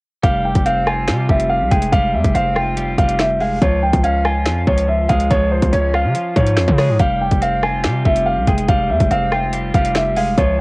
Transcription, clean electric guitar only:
0.24 1.07 G3 medium
0.66 1.71 C4 medium
0.87 1.93 F4 medium
1.08 1.28 G3 medium
1.29 1.92 G3 medium
1.71 2.77 G#3 medium
1.93 2.76 G3 medium
2.35 3.40 C4 medium
2.56 3.61 F4 loud
2.77 2.97 G3 medium
2.98 3.62 G3 medium
3.41 3.61 G#3 medium
3.62 4.45 F3 medium
4.04 5.09 C#4 medium
4.25 5.31 F4 medium
4.46 4.66 F3 medium
4.67 5.29 F3 medium
5.09 6.15 G#3 medium
5.31 6.14 F3 medium
5.73 6.78 C#4 medium
5.94 7.00 F4 loud
6.15 6.35 F3 medium
6.36 7.00 F3 medium
6.79 6.99 G#3 medium
7.00 7.83 G3 medium
7.42 8.47 C4 medium
7.63 8.69 F4 medium
7.84 8.04 G3 medium
8.05 8.68 G3 medium
8.48 9.53 G#3 medium
8.69 9.52 G3 medium
9.11 10.16 C4 medium
9.32 10.38 F4 loud
9.53 9.73 G3 medium
9.74 10.38 G3 medium
10.17 10.37 G#3 medium
10.38 10.61 F3 medium

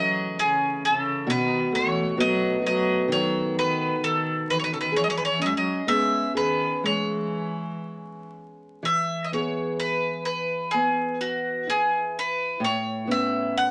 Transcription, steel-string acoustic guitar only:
0.00 1.26 C#3 medium
0.00 1.36 E3 medium
0.00 1.72 A3 medium
0.00 1.37 C#4 medium
0.00 1.27 E4 medium
1.27 4.92 B2 medium
1.27 2.17 F#4 medium
1.72 2.16 A3 medium
2.17 5.02 A3 medium
2.17 5.42 B3 medium
2.17 2.60 F#4 medium
2.62 4.92 F#4 medium
3.08 5.01 D#3 medium
4.92 5.88 G#4 medium
5.39 5.86 C#4 soft
5.87 9.32 B3 soft
5.87 8.93 C#4 soft
5.87 6.34 G#4 medium
6.35 9.34 G#4 soft
6.84 10.34 G#3 medium
8.83 12.60 E3 medium
9.32 10.74 B3 soft
9.32 11.67 E4 soft
9.32 12.72 G#4 soft
10.74 13.07 B3 soft
11.67 13.08 E4 soft
12.60 13.71 A2 medium
13.07 13.71 B3 soft
13.07 13.71 C#4 soft
13.07 13.71 E4 soft

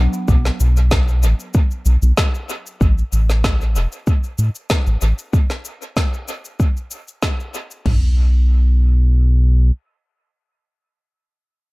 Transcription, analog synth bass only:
0.28 0.50 B1 loud
0.60 1.24 B1 medium
1.23 1.34 A1 loud
1.86 1.97 B1 medium
2.02 2.13 B1 loud
2.81 3.03 A1 medium
3.13 3.76 A1 medium
3.75 3.87 E1 medium
4.39 4.50 A2 medium
4.87 4.97 A1 medium
5.02 5.13 A1 medium
7.86 9.71 B1 medium

